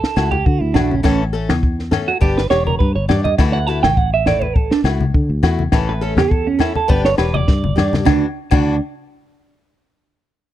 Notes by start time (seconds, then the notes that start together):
Already playing: A4
0.04 snare
0.16 C#2 A3 E4 F#4, snare, low agogo
0.31 G4, high conga
0.45 D3 F#4, kick
0.61 D2 E4
0.74 A#1 A3 D4 E4 F#4, snare, low conga, low agogo
0.91 C#4, high conga
1.03 A1 E3 A3 C#4 A4, kick, snare, low agogo
1.33 A3 C#4 A4
1.49 E2, snare, high conga, low conga, low agogo
1.63 kick
1.79 snare
1.91 A3 C#4 A4, snare, low conga, low agogo
2.08 F#4
2.21 G1 B3 D4 G4, kick
2.37 B4, snare
2.50 E1 D4 G4 C#5, snare, low agogo
2.67 A#4, high conga
2.79 G2 B4, kick
2.96 G1 C#5
3.09 G2 D4 G4 D5, snare, low conga, low agogo
3.24 D#5, high conga
3.38 D2 E3 A3 E4 F#4, muted clean electric guitar stroke, kick, snare, low agogo
3.53 F#5
3.66 A3 E4 F#4 A5
3.83 A1 G5, snare, high conga, low agogo
3.97 F#5, kick
4.14 E5
4.26 A3 E4 D5, snare, low conga, low agogo
4.42 B4, high conga
4.56 A4, kick
4.71 D4, snare
4.84 C#2 A3 E4 F#4, snare, low agogo
5.01 high conga
5.14 D3, kick
5.29 D2
5.43 E2 A3 E4 F#4, snare, low conga, low agogo
5.59 high conga
5.72 A1 E3 A3 C#4 A4, kick, snare, low agogo
5.89 B4
6.01 A3 C#4 A4
6.17 E2 G4, snare, high conga, low conga, low agogo
6.31 A4, kick
6.47 C#4
6.59 A3 C#4 E4 A4, snare, low conga, low agogo
6.76 A4, high conga
6.88 G1 B3 D4 G4 B4, kick
7.05 C#5, snare
7.18 E1 D4 G4 B4, snare, low agogo
7.34 D5, high conga
7.48 G2, kick, snare
7.64 G1, high conga
7.76 G2 D4 G4, snare, low conga, low agogo
7.93 snare, high conga
8.05 D2 E3 D4 F#4, muted steel-string acoustic guitar stroke, kick, snare, high conga, low agogo
8.51 D2 E3 D4 F#4, muted steel-string acoustic guitar stroke, kick, crash, high conga, low agogo